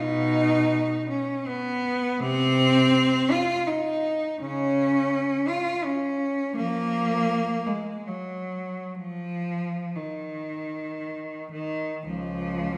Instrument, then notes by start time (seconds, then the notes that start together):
cello
Already playing: B2 D#4
1.09 C#4
1.46 B3
2.19 C3 C4
3.31 F4
3.67 D#4
4.40 C#3 C#4
5.48 F4
5.84 C#4
6.55 F3 A#3
7.66 G#3
8.06 F#3
8.94 F3
9.96 D#3
11.51 D#3
12.05 C#2 F3